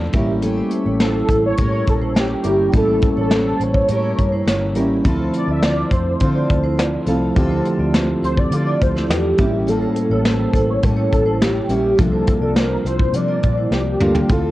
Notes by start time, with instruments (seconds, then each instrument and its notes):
Already playing: steel-string acoustic guitar D3 C4 F4 A4, tine electric piano F3 A3 C4 E4
0.13 fingered electric bass A1, tine electric piano G3 A#3 C#4 E4, steel-string acoustic guitar C#4 G4 A#4, vibraphone G4 E5, kick, closed hi-hat
0.42 steel-string acoustic guitar A3 C#4 G4, closed hi-hat
0.58 vibraphone E4 C5
0.71 closed hi-hat
0.86 fingered electric bass A1, vibraphone E4 C#5
1.00 vibraphone E4 C5, soft synth lead A4, snare, closed hi-hat
1.28 fingered electric bass A1, vibraphone E4 C5, kick, closed hi-hat
1.46 soft synth lead C#5
1.57 fingered electric bass A2, steel-string acoustic guitar A3 C#4 G4 A#4, soft synth lead C#5, kick, closed hi-hat
1.73 vibraphone E4 C#5
1.87 fingered electric bass A#1, soft synth lead A4, kick, closed hi-hat
2.02 vibraphone E4 C5
2.15 vibraphone E4 C#5, soft synth lead G4, snare, closed hi-hat
2.43 fingered electric bass G1, tine electric piano G3 A#3 C#4 E4, steel-string acoustic guitar C#4 G4 A#4, vibraphone G4 E5, closed hi-hat
2.72 fingered electric bass A1, tine electric piano G3 A#3 C#4 E4, steel-string acoustic guitar A3 C#4 G4, kick, closed hi-hat
2.77 soft synth lead A4
2.88 vibraphone E4 C5
3.02 kick, closed hi-hat
3.17 fingered electric bass A1, vibraphone E4 C#5
3.21 soft synth lead A4
3.31 vibraphone E4 C5, snare, closed hi-hat
3.60 fingered electric bass A1, vibraphone E4 C5, soft synth lead C#5, closed hi-hat
3.74 kick
3.88 fingered electric bass A2, steel-string acoustic guitar A3 C#4 G4 A#4, closed hi-hat
4.02 vibraphone E4 C#5
4.18 fingered electric bass G2, kick, closed hi-hat
4.32 vibraphone E4 C5
4.46 fingered electric bass G1, vibraphone E4 C#5, snare, closed hi-hat
4.75 fingered electric bass A1, tine electric piano G3 A#3 C#4 E4, steel-string acoustic guitar C#4 G4 A#4, vibraphone G4 E5, closed hi-hat
5.04 fingered electric bass D2, steel-string acoustic guitar D3 C4 F4, tine electric piano F3 A3 C4 E4, kick, closed hi-hat
5.08 steel-string acoustic guitar A4
5.19 vibraphone E4 C5
5.33 soft synth lead D5, closed hi-hat
5.47 fingered electric bass D2, vibraphone F4 D5, soft synth lead E5
5.62 vibraphone F4 C5, soft synth lead D5, snare, closed hi-hat
5.91 fingered electric bass F2, vibraphone E4 C5, soft synth lead C5, kick, closed hi-hat
6.20 fingered electric bass D3, steel-string acoustic guitar D3 C4 F4 A4, kick, closed hi-hat
6.35 vibraphone F4 D5
6.50 fingered electric bass D2, kick, closed hi-hat
6.64 vibraphone E4 C5
6.78 vibraphone F4 D5, snare, closed hi-hat
7.06 fingered electric bass C2, tine electric piano F3 A3 C4 E4, steel-string acoustic guitar F4 A4, vibraphone A4 F5, closed hi-hat
7.10 steel-string acoustic guitar C4
7.35 fingered electric bass D2, steel-string acoustic guitar D3 C4 F4, tine electric piano F3 A3 C4 G4, kick, closed hi-hat
7.39 steel-string acoustic guitar A4
7.51 vibraphone E4 C5
7.65 closed hi-hat
7.78 fingered electric bass D2, vibraphone F4 D5
7.94 vibraphone F4 C5, snare, closed hi-hat
8.22 fingered electric bass D2, vibraphone E4 C5, soft synth lead C5, closed hi-hat
8.37 soft synth lead D5, kick
8.51 fingered electric bass D3, steel-string acoustic guitar D3 C4 F4 A4, soft synth lead D5, closed hi-hat
8.67 vibraphone F4 D5
8.81 fingered electric bass D2, soft synth lead C5, kick, closed hi-hat
8.96 vibraphone E4 C5, snare
9.09 fingered electric bass E2, vibraphone F4 D5, soft synth lead G4, snare, closed hi-hat
9.38 fingered electric bass A1, tine electric piano G3 A#3 C4 E4, steel-string acoustic guitar G3 A#3 C#4, vibraphone G4 E5, kick, closed hi-hat
9.46 tine electric piano C#4
9.67 steel-string acoustic guitar A2 G3 A#3, soft synth lead A4, closed hi-hat
9.71 steel-string acoustic guitar C#4
9.82 vibraphone E4 C5
9.96 closed hi-hat
10.10 fingered electric bass A1, vibraphone E4 C#5, soft synth lead A4
10.25 vibraphone E4 C5, soft synth lead A4, snare, closed hi-hat
10.53 fingered electric bass A1, vibraphone E4 C5, kick, closed hi-hat
10.70 soft synth lead C#5
10.83 steel-string acoustic guitar A2 G3 A#3 C#4, fingered electric bass A2, soft synth lead A4, kick, closed hi-hat
10.97 vibraphone E4 C#5
11.12 fingered electric bass A1, soft synth lead A4, kick, closed hi-hat
11.26 vibraphone E4 C5
11.41 vibraphone E4 C#5, soft synth lead G4, snare, closed hi-hat
11.68 fingered electric bass A#1, tine electric piano G3 A#3 C#4 G4, steel-string acoustic guitar A#3 C#4, vibraphone G4 E5, closed hi-hat
11.73 steel-string acoustic guitar G3
11.98 fingered electric bass C2, steel-string acoustic guitar C3 F3 A#3 D4, tine electric piano G3 A#3 D4 F4, soft synth lead A4, kick, closed hi-hat
12.12 vibraphone E4 C5
12.27 kick, closed hi-hat
12.41 fingered electric bass C2, vibraphone F4 D5, soft synth lead A4
12.56 vibraphone F4 C5, soft synth lead A#4, snare, closed hi-hat
12.84 fingered electric bass C2, vibraphone E4 C5, soft synth lead C5, closed hi-hat
12.99 kick
13.13 fingered electric bass C3, steel-string acoustic guitar C3 F3 A#3 D4, soft synth lead D5, closed hi-hat
13.28 vibraphone F4 D5
13.43 fingered electric bass A#2, kick, closed hi-hat
13.57 vibraphone E4 C5
13.71 fingered electric bass C2, vibraphone F4 D5, soft synth lead G4, snare
14.00 fingered electric bass D2, steel-string acoustic guitar F3 A#3 D4, tine electric piano G3 A#3 D4 F4, vibraphone A4 F5, mid tom
14.15 floor tom
14.29 fingered electric bass D2, steel-string acoustic guitar D3 C4 F4 A4, tine electric piano A3 C4 E4 F4, soft synth lead A4, kick, closed hi-hat